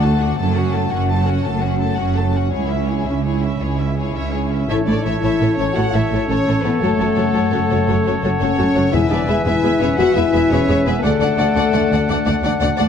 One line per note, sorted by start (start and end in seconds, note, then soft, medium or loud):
0.00 0.32 D2 medium
0.00 0.33 D2 medium
0.00 0.41 D3 soft
0.00 0.21 F#4 soft
0.00 0.21 A4 soft
0.00 0.21 A5 soft
0.04 2.55 A3 soft
0.20 0.39 D4 soft
0.20 0.39 F#4 soft
0.20 0.55 F#4 soft
0.20 0.38 F#5 soft
0.38 0.86 F#1 medium
0.38 0.85 F#2 medium
0.38 2.54 F#2 soft
0.38 0.55 A3 soft
0.38 0.55 A4 soft
0.38 0.55 A5 soft
0.55 0.74 C#4 soft
0.55 0.91 F#4 soft
0.55 0.74 F#4 soft
0.55 0.73 F#5 soft
0.73 0.92 A3 soft
0.73 1.04 E4 soft
0.73 0.92 A4 soft
0.73 0.91 A5 soft
0.90 1.40 F#1 soft
0.90 1.39 F#2 soft
0.90 1.10 C#4 soft
0.90 1.26 F#4 soft
0.90 1.10 F#4 soft
0.90 1.09 F#5 soft
1.10 1.44 C#3 soft
1.10 1.27 A3 soft
1.10 1.27 A4 soft
1.10 1.26 A5 soft
1.25 1.45 C#4 soft
1.25 1.44 F#4 soft
1.25 1.61 F#4 soft
1.25 1.44 F#5 soft
1.44 1.93 F#1 soft
1.44 1.92 F#2 soft
1.44 2.15 C#3 soft
1.44 1.63 A3 soft
1.44 1.63 A4 soft
1.44 1.62 A5 soft
1.61 1.80 C#4 soft
1.61 1.80 F#4 soft
1.61 1.98 F#4 soft
1.61 1.80 F#5 soft
1.79 1.97 A3 soft
1.79 2.11 E4 soft
1.79 1.97 A4 soft
1.79 1.97 A5 soft
1.96 2.47 F#1 soft
1.96 2.47 F#2 soft
1.96 2.17 C#4 soft
1.96 2.17 F#4 soft
1.96 2.33 F#4 soft
1.96 2.16 F#5 soft
2.15 2.54 C#3 soft
2.15 2.34 A3 soft
2.15 2.34 A4 soft
2.15 2.35 A5 soft
2.34 2.52 C#4 soft
2.34 2.54 F#4 soft
2.34 2.53 F#4 soft
2.34 2.53 F#5 soft
2.52 3.00 C#2 soft
2.52 3.01 C#2 soft
2.52 4.70 C#4 soft
2.52 2.70 E4 soft
2.52 2.69 G#4 soft
2.52 2.69 C#5 soft
2.69 2.88 C#4 soft
2.69 2.88 E4 soft
2.69 3.05 E4 soft
2.69 2.88 E5 soft
2.86 3.20 D4 soft
2.86 3.07 E4 soft
2.86 3.08 G#4 soft
2.86 3.06 C#5 soft
3.05 3.55 C#2 soft
3.05 3.25 C#4 soft
3.05 3.41 E4 soft
3.05 3.25 E4 soft
3.05 3.24 E5 soft
3.25 3.60 G#3 soft
3.25 3.42 E4 soft
3.25 3.42 G#4 soft
3.25 3.42 C#5 soft
3.42 3.62 C#4 soft
3.42 3.79 E4 soft
3.42 3.61 E4 soft
3.42 3.61 E5 soft
3.60 4.09 C#2 soft
3.60 4.32 G#3 soft
3.60 3.80 E4 soft
3.60 3.79 G#4 soft
3.60 3.80 C#5 soft
3.77 3.97 C#4 soft
3.77 3.96 E4 soft
3.77 4.14 E4 soft
3.77 3.98 E5 soft
3.97 4.28 D4 soft
3.97 4.14 E4 soft
3.97 4.14 G#4 soft
3.97 4.15 C#5 soft
4.14 4.63 C#2 soft
4.14 4.65 C#4 soft
4.14 4.33 C#4 soft
4.14 4.33 E4 soft
4.14 4.50 E4 soft
4.14 4.33 C#5 soft
4.14 4.34 E5 soft
4.33 4.71 G#3 soft
4.33 4.52 E4 soft
4.33 4.51 G#4 soft
4.33 4.52 C#5 soft
4.51 4.69 C#4 soft
4.51 5.03 E4 soft
4.51 4.69 E4 soft
4.51 4.69 E5 soft
4.69 4.76 A1 soft
4.69 6.83 A2 soft
4.69 4.77 A2 soft
4.69 4.77 A3 soft
4.69 4.86 E4 medium
4.69 4.77 E4 soft
4.69 8.89 A4 soft
4.69 4.77 A4 soft
4.69 8.89 C#5 soft
4.69 4.77 C#5 soft
4.69 4.77 E5 medium
4.69 8.89 A5 soft
4.85 4.94 A1 soft
4.85 4.94 A2 soft
4.85 4.94 A3 soft
4.85 5.56 C#4 soft
4.85 5.03 D4 medium
4.85 4.94 E4 soft
4.85 5.05 D5 soft
4.90 4.96 A4 soft
4.90 4.96 C#5 soft
5.03 5.12 A1 soft
5.03 5.12 A2 soft
5.03 5.11 A3 soft
5.03 5.19 E4 medium
5.03 5.38 E4 soft
5.03 5.12 E4 soft
5.03 5.12 A4 soft
5.03 5.13 C#5 soft
5.03 5.21 E5 soft
5.20 5.29 A1 soft
5.20 5.30 A2 soft
5.20 5.30 A3 soft
5.20 5.56 E4 medium
5.20 5.30 E4 soft
5.20 6.28 A4 soft
5.20 5.30 A4 soft
5.20 5.31 C#5 soft
5.20 5.57 E5 medium
5.39 5.47 A1 soft
5.39 5.47 A2 soft
5.39 5.48 A3 soft
5.39 6.10 E4 soft
5.39 5.47 E4 soft
5.39 5.49 A4 soft
5.39 5.49 C#5 soft
5.56 5.65 A1 soft
5.56 5.65 A2 soft
5.56 5.66 A3 soft
5.56 5.74 C#4 medium
5.56 5.92 C#4 soft
5.56 5.66 E4 soft
5.56 5.66 A4 soft
5.56 5.75 C#5 medium
5.60 5.67 C#5 soft
5.73 5.83 A1 soft
5.73 5.83 A2 soft
5.73 6.83 E3 soft
5.73 5.83 A3 soft
5.73 5.83 E4 soft
5.73 5.92 F#4 medium
5.73 5.93 F#5 medium
5.78 5.84 A4 soft
5.78 5.84 C#5 soft
5.91 6.01 A1 soft
5.91 6.01 A2 soft
5.91 6.01 A3 soft
5.91 6.63 C#4 soft
5.91 6.28 E4 medium
5.91 6.01 E4 soft
5.91 6.29 E5 soft
5.96 6.02 A4 soft
5.96 6.02 C#5 soft
6.10 6.19 A1 soft
6.10 6.17 A2 soft
6.10 6.19 A3 soft
6.10 6.46 E4 soft
6.10 6.19 E4 soft
6.10 6.20 A4 soft
6.10 6.20 C#5 soft
6.27 6.36 A1 soft
6.27 6.36 A2 soft
6.27 6.36 A3 soft
6.27 6.62 C#4 medium
6.27 6.36 E4 soft
6.27 7.33 A4 soft
6.27 6.37 A4 soft
6.27 6.64 C#5 medium
6.27 6.37 C#5 soft
6.46 6.54 A1 soft
6.46 6.53 A2 soft
6.46 6.54 A3 soft
6.46 6.54 E4 soft
6.46 6.83 E4 soft
6.46 6.55 A4 soft
6.46 6.55 C#5 soft
6.63 6.71 A1 soft
6.63 6.70 A2 soft
6.63 6.72 A3 soft
6.63 6.81 B3 medium
6.63 6.98 C#4 soft
6.63 6.72 E4 soft
6.63 6.71 A4 soft
6.63 6.82 B4 soft
6.63 6.71 C#5 soft
6.80 6.89 F#1 soft
6.80 6.87 F#2 soft
6.80 8.94 F#2 soft
6.80 8.22 A3 medium
6.80 6.89 A3 soft
6.80 6.89 F#4 soft
6.80 8.20 A4 medium
6.80 6.90 A4 soft
6.80 6.89 C#5 soft
6.98 7.07 F#1 soft
6.98 7.05 F#2 soft
6.98 7.07 A3 soft
6.98 7.69 C#4 soft
6.98 7.07 F#4 soft
6.98 7.07 A4 soft
6.98 7.06 C#5 soft
7.16 7.25 F#1 soft
7.16 7.23 F#2 soft
7.16 7.24 A3 soft
7.16 7.24 F#4 soft
7.16 7.51 F#4 soft
7.16 7.24 A4 soft
7.16 7.23 C#5 soft
7.33 7.42 F#1 soft
7.33 7.40 F#2 soft
7.33 7.42 A3 soft
7.33 7.42 F#4 soft
7.33 8.40 A4 soft
7.33 7.42 A4 soft
7.33 7.42 C#5 soft
7.51 7.60 F#1 soft
7.51 7.58 F#2 soft
7.51 7.60 A3 soft
7.51 8.22 F#4 soft
7.51 7.60 F#4 soft
7.51 7.59 A4 soft
7.51 7.59 C#5 soft
7.69 7.78 F#1 soft
7.69 7.76 F#2 soft
7.69 7.78 A3 soft
7.69 8.04 C#4 soft
7.69 7.78 F#4 soft
7.69 7.77 A4 soft
7.69 7.78 C#5 soft
7.87 7.96 F#1 soft
7.87 7.94 F#2 soft
7.87 8.94 C#3 soft
7.87 7.95 A3 soft
7.87 7.95 F#4 soft
7.87 7.95 A4 soft
7.87 7.96 C#5 soft
8.06 8.14 F#1 soft
8.06 8.13 F#2 soft
8.06 8.13 A3 soft
8.06 8.75 C#4 soft
8.06 8.13 F#4 soft
8.06 8.13 A4 soft
8.06 8.13 C#5 soft
8.23 8.31 F#1 soft
8.23 8.30 F#2 soft
8.23 8.31 A3 soft
8.23 8.57 F#4 soft
8.23 8.31 F#4 soft
8.23 8.30 A4 soft
8.23 8.30 C#5 soft
8.39 8.49 F#1 soft
8.39 8.47 F#2 soft
8.39 8.48 A3 soft
8.39 8.89 C#4 medium
8.39 8.48 F#4 soft
8.39 8.47 A4 soft
8.39 8.95 A4 soft
8.39 8.47 C#5 soft
8.39 8.90 C#5 medium
8.58 8.66 F#1 soft
8.58 8.65 F#2 soft
8.58 8.65 A3 soft
8.58 8.65 F#4 soft
8.58 8.95 F#4 soft
8.58 8.65 A4 soft
8.58 8.65 C#5 soft
8.75 8.84 F#1 soft
8.75 8.83 F#2 soft
8.75 8.82 A3 soft
8.75 8.95 C#4 soft
8.75 8.82 F#4 soft
8.75 8.82 A4 soft
8.75 8.82 C#5 soft
8.92 9.01 E1 soft
8.92 9.00 E2 soft
8.92 11.06 E2 soft
8.92 9.43 E2 medium
8.92 9.00 G#3 medium
8.92 9.10 E4 medium
8.92 9.00 G#4 soft
8.92 9.00 B4 soft
8.92 11.04 B4 medium
8.92 10.99 E5 soft
8.92 9.10 E5 medium
8.92 9.00 E5 soft
8.92 11.05 G#5 soft
9.10 9.19 E1 soft
9.10 9.18 E2 soft
9.10 9.18 G#3 soft
9.10 9.28 D4 medium
9.10 9.80 E4 soft
9.10 9.18 G#4 soft
9.10 9.19 B4 soft
9.10 9.28 D5 medium
9.10 9.18 E5 soft
9.28 9.36 E1 soft
9.28 9.35 E2 soft
9.28 9.36 G#3 soft
9.28 9.43 E4 medium
9.28 9.62 G#4 soft
9.28 9.35 G#4 soft
9.28 9.35 B4 soft
9.28 9.43 E5 medium
9.28 9.35 E5 soft
9.44 9.54 E1 soft
9.44 9.53 E2 medium
9.44 9.52 G#3 soft
9.44 9.80 E4 medium
9.44 9.52 G#4 soft
9.44 10.50 B4 soft
9.44 9.53 B4 soft
9.44 9.79 E5 medium
9.44 9.53 E5 soft
9.63 9.72 E1 soft
9.63 9.71 E2 medium
9.63 9.70 G#3 soft
9.63 9.70 G#4 soft
9.63 10.33 G#4 soft
9.63 9.72 B4 soft
9.63 9.72 E5 soft
9.80 9.89 E1 medium
9.80 9.88 E2 soft
9.80 9.88 G#3 soft
9.80 9.98 C#4 medium
9.80 10.15 E4 soft
9.80 9.88 G#4 soft
9.80 9.88 B4 soft
9.80 9.98 C#5 medium
9.80 9.88 E5 soft
9.98 10.07 E1 medium
9.98 10.06 E2 soft
9.98 11.05 B2 soft
9.98 10.06 G#3 soft
9.98 10.16 F#4 medium
9.98 10.06 G#4 soft
9.98 10.07 B4 soft
9.98 10.06 E5 soft
9.98 10.15 F#5 medium
10.15 10.24 E1 soft
10.15 10.23 E2 medium
10.15 10.23 G#3 soft
10.15 10.51 E4 medium
10.15 10.85 E4 soft
10.15 10.23 G#4 soft
10.15 10.24 B4 soft
10.15 10.51 E5 medium
10.15 10.23 E5 soft
10.33 10.42 E1 soft
10.33 10.41 E2 soft
10.33 10.40 G#3 soft
10.33 10.40 G#4 soft
10.33 10.67 G#4 soft
10.33 10.40 B4 soft
10.33 10.40 E5 soft
10.50 10.58 E1 medium
10.50 10.59 E2 medium
10.50 10.58 G#3 medium
10.50 10.86 C#4 medium
10.50 10.58 G#4 soft
10.50 11.05 B4 soft
10.50 10.59 B4 medium
10.50 10.86 C#5 medium
10.50 10.59 E5 medium
10.68 10.76 E1 soft
10.68 10.76 E2 medium
10.68 10.76 G#3 soft
10.68 11.05 G#4 soft
10.68 10.76 G#4 soft
10.68 10.76 B4 soft
10.68 10.76 E5 soft
10.85 10.93 E1 medium
10.85 10.94 E2 medium
10.85 10.93 G#3 soft
10.85 11.04 B3 medium
10.85 11.05 E4 soft
10.85 10.93 G#4 soft
10.85 11.03 B4 medium
10.85 10.93 B4 soft
10.85 10.94 E5 soft
11.02 11.11 D2 medium
11.02 12.88 D3 medium
11.02 12.43 A3 medium
11.02 11.10 A3 medium
11.02 11.10 D4 medium
11.02 12.44 A4 medium
11.02 12.86 D5 medium
11.02 11.11 D5 soft
11.02 12.82 F#5 medium
11.02 11.12 F#5 medium
11.02 12.86 A5 medium
11.21 11.28 D2 soft
11.21 11.28 D2 medium
11.21 11.28 A3 soft
11.21 11.28 D4 soft
11.21 11.90 F#4 soft
11.21 11.28 D5 soft
11.21 11.29 F#5 soft
11.37 11.46 D2 medium
11.37 11.45 A3 soft
11.37 11.45 D4 soft
11.37 11.72 A4 soft
11.37 11.46 D5 medium
11.37 11.46 F#5 soft
11.55 11.63 D2 medium
11.55 11.64 D2 medium
11.55 11.62 A3 medium
11.55 11.63 D4 medium
11.55 12.61 D5 soft
11.55 11.63 D5 medium
11.55 11.63 F#5 medium
11.73 11.81 D2 medium
11.73 11.82 D2 medium
11.73 11.80 A3 soft
11.73 11.80 D4 soft
11.73 11.81 D5 soft
11.73 11.81 F#5 soft
11.89 11.98 D2 medium
11.89 11.99 D2 medium
11.89 11.97 A3 soft
11.89 11.97 D4 soft
11.89 12.25 F#4 soft
11.89 11.99 D5 soft
11.89 11.99 F#5 soft
12.09 12.16 D2 medium
12.09 12.88 A3 soft
12.09 12.16 A3 medium
12.09 12.16 D4 soft
12.09 12.17 D5 medium
12.09 12.17 F#5 medium
12.26 12.33 D2 medium
12.26 12.35 D2 medium
12.26 12.34 A3 soft
12.26 12.33 D4 soft
12.26 12.88 F#4 soft
12.26 12.34 D5 soft
12.26 12.34 F#5 soft
12.43 12.50 D2 medium
12.43 12.53 D2 medium
12.43 12.52 A3 soft
12.43 12.52 D4 medium
12.43 12.78 A4 medium
12.43 12.51 D5 medium
12.43 12.51 F#5 medium
12.61 12.68 D2 medium
12.61 12.70 D2 medium
12.61 12.69 A3 soft
12.61 12.69 D4 soft
12.61 12.69 D5 medium
12.61 12.88 D5 medium
12.61 12.68 F#5 medium
12.77 12.87 D2 medium
12.77 12.86 A3 medium
12.77 12.86 D4 medium
12.77 12.88 A4 soft
12.77 12.85 D5 medium
12.77 12.85 F#5 medium